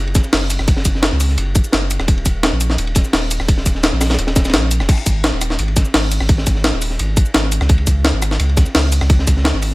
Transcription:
Already playing: F#1
0.07 ride
0.15 kick, snare, closed hi-hat, ride, shaker
0.24 shaker
0.33 F#1, snare, closed hi-hat, open hi-hat
0.50 closed hi-hat, ride, shaker
0.59 F#1, cross-stick, snare
0.68 kick, closed hi-hat, ride
0.77 snare
0.85 F#1, kick, closed hi-hat, ride, shaker
0.95 snare
1.02 snare, closed hi-hat, ride
1.12 C#2, snare
1.20 open hi-hat, ride, shaker
1.29 snare
1.38 F#1, closed hi-hat, ride
1.55 kick, closed hi-hat, ride, shaker
1.64 shaker
1.72 F#1, snare, closed hi-hat, ride
1.82 snare
1.91 closed hi-hat, ride, shaker
1.99 D#1, cross-stick, snare
2.08 kick, closed hi-hat, ride
2.17 ride
2.26 D#1, kick, closed hi-hat, ride, shaker
2.43 snare, closed hi-hat, ride
2.52 A#1
2.61 closed hi-hat, ride, shaker
2.70 snare
2.78 D#1, closed hi-hat, ride
2.87 ride
2.95 kick, snare, closed hi-hat, ride, shaker
3.05 shaker
3.13 D#1, snare, closed hi-hat, open hi-hat
3.31 closed hi-hat, ride, shaker
3.40 D#1, cross-stick, snare
3.48 kick, closed hi-hat, ride
3.57 snare
3.66 D#1, kick, closed hi-hat, ride, shaker
3.75 snare
3.83 snare, closed hi-hat, ride, shaker
3.92 A#1, snare
4.01 cross-stick, snare, open hi-hat, ride, shaker
4.10 snare, ride
4.14 snare, ride
4.18 D#1, snare, closed hi-hat, ride
4.27 snare, ride
4.36 kick, snare, closed hi-hat, ride, shaker
4.45 snare, ride, shaker
4.49 snare, ride
4.54 A#1, snare, closed hi-hat, ride
4.63 snare
4.71 closed hi-hat, ride, shaker
4.80 D#1, cross-stick, snare
4.89 kick, closed hi-hat, crash, ride
4.97 ride
5.06 G#1, kick, closed hi-hat, ride, shaker
5.24 snare, closed hi-hat, ride
5.33 D#1
5.41 cross-stick, closed hi-hat, ride, shaker
5.50 snare
5.59 G#1, closed hi-hat, ride
5.68 ride
5.76 kick, snare, closed hi-hat, ride, shaker
5.85 shaker
5.94 G#1, snare, closed hi-hat, open hi-hat
6.11 closed hi-hat, ride, shaker
6.20 G#1, cross-stick, snare
6.29 kick, closed hi-hat, ride
6.38 snare
6.46 G#1, kick, closed hi-hat, ride, shaker
6.55 snare
6.64 snare, closed hi-hat, ride
6.73 D#1, snare
6.82 open hi-hat, ride, shaker
6.90 snare
6.99 G#1, closed hi-hat, ride
7.17 kick, closed hi-hat, ride, shaker
7.26 shaker
7.34 G#1, snare, closed hi-hat, ride
7.43 snare
7.52 closed hi-hat, ride, shaker
7.61 C#2, cross-stick, snare
7.69 kick, closed hi-hat, ride
7.78 ride
7.87 C#2, kick, closed hi-hat, ride, shaker
8.05 snare, closed hi-hat, ride
8.13 G#1
8.22 cross-stick, closed hi-hat, ride, shaker
8.31 snare
8.39 C#2, closed hi-hat, ride
8.49 ride
8.57 kick, snare, closed hi-hat, ride, shaker
8.66 shaker
8.75 C#2, snare, closed hi-hat, open hi-hat
8.92 closed hi-hat, ride, shaker
9.01 C#2, cross-stick, snare
9.09 kick, closed hi-hat, ride
9.19 snare
9.27 C#2, kick, closed hi-hat, ride, shaker
9.37 snare
9.44 snare, closed hi-hat, ride
9.53 G#1, snare
9.62 open hi-hat, ride, shaker

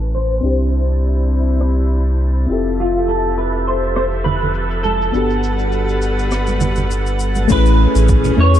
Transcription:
Already playing: A1 A3 C#4 E4 B4 G#5 A6
0.13 C5, shaker
0.31 shaker
0.41 C2 C3 C4 D4 E4 C5, shaker
0.45 G4 C5
0.60 shaker
0.73 shaker
0.89 shaker
1.04 shaker
1.33 shaker
1.48 shaker
1.61 cross-stick, shaker
1.77 shaker
1.91 shaker
2.07 shaker
2.21 shaker
2.36 shaker
2.47 F1 F3 C4 E4 F4 G4 A4 E5, shaker
2.51 G4 A4
2.65 shaker
2.79 F4, shaker
2.96 shaker
3.08 A4, shaker
3.25 shaker
3.38 B4, shaker
3.54 shaker
3.67 C5, shaker
3.83 shaker
3.96 C5, cross-stick, shaker
4.12 shaker
4.24 B4, low conga, shaker
4.41 low conga, shaker
4.54 shaker
4.71 shaker
4.83 A4, high conga, shaker
5.02 shaker
5.12 G1 G3 B3 D4 F#4 B4 F#5, shaker
5.16 G4 A4
5.30 shaker
5.43 shaker
5.59 shaker
5.72 shaker
5.89 shaker
6.02 shaker
6.19 shaker
6.31 cross-stick, shaker
6.47 high conga, shaker
6.60 low conga, shaker
6.76 low conga, shaker
6.91 shaker
7.07 shaker
7.19 shaker
7.35 high conga, shaker
7.48 A1 A3 C#4 E4 G#4 B4, kick, crash, shaker
7.53 G#4 B4
7.66 open hi-hat, shaker
7.95 A1, open hi-hat, shaker
8.08 kick, shaker
8.24 mid tom, open hi-hat, shaker
8.36 E2 A3 C#4 E4 C#5
8.41 G#4 B4
8.54 open hi-hat, shaker

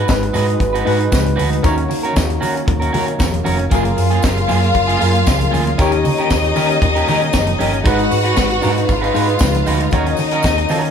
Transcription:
Already playing: G#3 D#4 F#4 G#4 B4
0.08 G#1, muted clean electric guitar stroke, kick, snare, tambourine, high conga
0.23 muted clean electric guitar stroke, closed hi-hat
0.33 G#2 D#4 F#4 B4, open hi-hat, tambourine, muted conga, low conga
0.48 muted clean electric guitar stroke, closed hi-hat
0.60 G#1, muted clean electric guitar stroke, kick, closed hi-hat, tambourine, muted conga
0.73 D#4 F#4 B4, closed hi-hat
0.85 G#2 G#3 D#4 F#4 B4, open hi-hat
1.00 muted clean electric guitar stroke, closed hi-hat
1.11 C#2, muted clean electric guitar stroke, kick, snare, tambourine, high conga
1.24 muted clean electric guitar stroke, closed hi-hat, high conga
1.36 D2 D#4 F#4 B4, open hi-hat, tambourine, high conga
1.51 muted clean electric guitar stroke, closed hi-hat
1.63 D#2 D#3 A#3 C#4 D#4 F#4 A#4 C#5 F5, kick, closed hi-hat, tambourine
1.77 muted clean electric guitar stroke, closed hi-hat
1.89 D#3, muted clean electric guitar stroke, open hi-hat, tambourine
2.03 C#4 F#4 A#4, closed hi-hat
2.15 D#2, muted clean electric guitar stroke, kick, snare, tambourine, high conga
2.29 muted clean electric guitar stroke, closed hi-hat
2.41 D#3 C#4 F#4 A#4, open hi-hat, tambourine, muted conga
2.55 muted clean electric guitar stroke, closed hi-hat
2.66 D#2, muted clean electric guitar stroke, kick, closed hi-hat, muted conga, low conga
2.80 C#4 F#4 A#4, closed hi-hat
2.93 D#3 C#4 F#4 A#4, open hi-hat, low conga
3.07 muted clean electric guitar stroke, closed hi-hat
3.19 E1, muted clean electric guitar stroke, kick, snare, tambourine, high conga
3.31 muted clean electric guitar stroke, closed hi-hat, high conga
3.44 F1 C#4 F#4 A#4, open hi-hat, tambourine, high conga
3.59 muted clean electric guitar stroke, closed hi-hat
3.70 F#1 F#3 A#3 F4 G#4 A#4 F5, kick, closed hi-hat, tambourine
3.75 A#4
3.85 muted clean electric guitar stroke, closed hi-hat
3.97 F#2, muted clean electric guitar stroke, open hi-hat, tambourine, muted conga
4.10 A#3 F4 G#4, closed hi-hat
4.22 F#1, muted clean electric guitar stroke, kick, snare, tambourine, high conga
4.37 muted clean electric guitar stroke, closed hi-hat
4.48 F#2 A#3 F4 G#4, open hi-hat, tambourine, muted conga, low conga
4.61 muted clean electric guitar stroke, closed hi-hat
4.74 F#1, muted clean electric guitar stroke, kick, closed hi-hat, muted conga
4.87 A#3 F4 G#4, closed hi-hat
4.99 F#2 F#3 A#3 F4 G#4 A#4, open hi-hat, tambourine
5.14 muted clean electric guitar stroke, closed hi-hat
5.25 C#2, muted clean electric guitar stroke, kick, snare, tambourine, high conga
5.38 muted clean electric guitar stroke, closed hi-hat, high conga
5.51 D2 A#3 F4 G#4, open hi-hat, tambourine, high conga
5.65 muted clean electric guitar stroke, closed hi-hat
5.78 D#2 D#3 A#3 C#4 D#4 F4 G4 A#4 C#5 D#5, kick, closed hi-hat, tambourine
5.92 muted clean electric guitar stroke, closed hi-hat
6.05 D#3, muted clean electric guitar stroke, open hi-hat, tambourine, muted conga
6.18 C#4 G4 A#4, closed hi-hat
6.30 D#2, muted clean electric guitar stroke, kick, snare, tambourine, high conga
6.44 muted clean electric guitar stroke, closed hi-hat
6.56 D#3 C#4 G4 A#4, open hi-hat, tambourine, muted conga
6.70 muted clean electric guitar stroke, closed hi-hat
6.82 D#2, muted clean electric guitar stroke, kick, closed hi-hat, tambourine, muted conga, low conga
6.95 C#4 G4 A#4, closed hi-hat
7.07 D#3 C#4 G4 A#4, open hi-hat, tambourine, low conga
7.22 muted clean electric guitar stroke, closed hi-hat
7.33 F#1, muted clean electric guitar stroke, kick, snare, tambourine, high conga
7.47 muted clean electric guitar stroke, closed hi-hat, high conga
7.59 G1 C#4 G4 A#4, open hi-hat, tambourine, high conga
7.73 muted clean electric guitar stroke, closed hi-hat
7.84 G#1 F#3 G#3 D#4 F#4 G#4 B4 F#5, kick, closed hi-hat, tambourine
7.88 B4
7.99 muted clean electric guitar stroke, closed hi-hat
8.11 G#2, muted clean electric guitar stroke, open hi-hat, tambourine, muted conga
8.23 D#4 F#4 B4, closed hi-hat
8.36 G#1, muted clean electric guitar stroke, kick, snare, tambourine, high conga
8.50 muted clean electric guitar stroke, closed hi-hat
8.62 G#2 D#4 F#4 B4, open hi-hat, tambourine, muted conga, low conga
8.77 muted clean electric guitar stroke, closed hi-hat
8.88 G#1 F4 F5, muted clean electric guitar stroke, kick, closed hi-hat, tambourine, muted conga
9.01 D#4 F#4 B4, closed hi-hat
9.14 G#2 G#3 D#4 F#4 B4, open hi-hat, tambourine
9.29 muted clean electric guitar stroke, closed hi-hat
9.39 C#2, muted clean electric guitar stroke, kick, snare, tambourine, high conga
9.54 muted clean electric guitar stroke, closed hi-hat, high conga
9.66 D2 D#4 F#4 B4, open hi-hat, tambourine, high conga
9.80 muted clean electric guitar stroke, closed hi-hat
9.91 D#2 D#3 A#3 C#4 D#4 F#4 A#4 C#5 D#5 F5, kick, closed hi-hat, tambourine
10.06 muted clean electric guitar stroke, closed hi-hat
10.17 D#3, muted clean electric guitar stroke, open hi-hat, tambourine, muted conga
10.31 C#4 F#4 A#4, closed hi-hat
10.43 D#2, muted clean electric guitar stroke, kick, snare, tambourine, high conga
10.58 muted clean electric guitar stroke, closed hi-hat
10.69 D#3 C#4 F#4 A#4, open hi-hat, tambourine, muted conga
10.83 muted clean electric guitar stroke, closed hi-hat

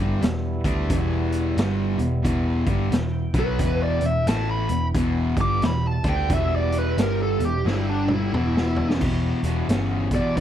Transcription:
Already playing: G1 G2 D3 B3 E4 G4
0.00 G3
0.22 E1 E2 B2 G3 B3 E4, snare, closed hi-hat
0.64 D2 D3 A3 D4, kick, closed hi-hat
0.90 E1 E2 B2 E3, kick, closed hi-hat
1.32 closed hi-hat
1.57 G1 G2 D3 G3, snare, closed hi-hat
1.99 E1 E2 B2, closed hi-hat
2.24 E1 E2 B2 E3, kick, closed hi-hat
2.66 G1 G2 D3 G3, kick, closed hi-hat
2.91 E1 E2 B2 B3 E4 G5, snare, closed hi-hat
3.34 B1 B2 F#3 B3, kick, closed hi-hat
3.39 B4
3.59 E1 E2 B2 E3, kick, closed hi-hat
3.83 D5
4.01 E1 E2 B2, closed hi-hat
4.06 E5
4.27 A1 A2 E3 A3 A5, snare, closed hi-hat
4.51 B5
4.69 E1 E2 B2, closed hi-hat
4.95 E1 E2 B2 E3, kick, closed hi-hat
5.37 G1 G2 D3 G3, kick, closed hi-hat
5.41 D6
5.62 E1 E2 B2 G3 B3 E4 B5, snare, closed hi-hat
5.87 A5
6.04 D2 D3 A3 D4, kick, closed hi-hat
6.09 G5
6.30 E1 E2 B2 E3 E5, kick, closed hi-hat
6.56 D5
6.72 closed hi-hat
6.78 B4
6.98 G1 G2 D3 G3 A#4, snare, closed hi-hat
7.23 A4
7.40 E1 E2 B2, closed hi-hat
7.45 G4
7.65 G1 G2 D3 G3 D4 E4 G4, snare
7.90 D4
8.08 mid tom
8.14 E4
8.33 E1 E2 B2 E3 B3 E4 G4, mid tom
8.57 snare
8.76 floor tom
8.90 snare
9.01 E1 E2 B2 F#4 G4 D5, kick, crash
9.43 E1 E2 B2, closed hi-hat
9.68 G1 E2 C#3, snare, closed hi-hat
10.11 E2 B2 D5, kick, closed hi-hat
10.37 B1 E2 E5, kick, closed hi-hat

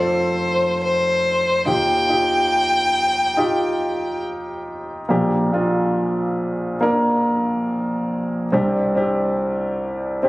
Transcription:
Already playing: F1 F2 C4 F4 A4 C5
0.83 C5
1.65 D#2 D#3 D#4 F4 G4 G5
2.09 D#4 F4 G4
3.37 D#4 F4 G4
5.09 A#1 A#2 A#3 D4 G4
5.52 A#3 D4 F4
6.81 A#3 D4 A#4
8.52 C2 C3 C4 D4 G4
8.95 C4 D4 G4
10.23 C4 D4 G4

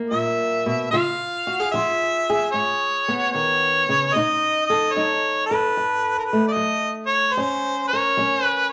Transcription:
Already playing: A#3 E4 A#4
0.10 A#2 E5
0.66 B2
0.91 C#3 F4 F5
1.47 F#4
1.60 G#4
1.71 F3 F4 E5
2.29 G#4
2.51 G#2 C#5
3.08 B3
3.31 D#3 C#5
3.89 C#3
4.13 B2 D#4 D#5
4.65 D#5
4.70 A4
4.92 C#5
4.96 F#3 D#4
5.46 B4
5.51 A4
5.77 F#2
6.19 A#4
6.25 B4
6.33 A3
6.48 D5
6.52 F#3 D#5
7.06 C#5
7.33 C5
7.37 F#2 C#4
7.88 C#5
7.93 A#4
8.17 F#3 C#4
8.45 B4
8.69 C#5

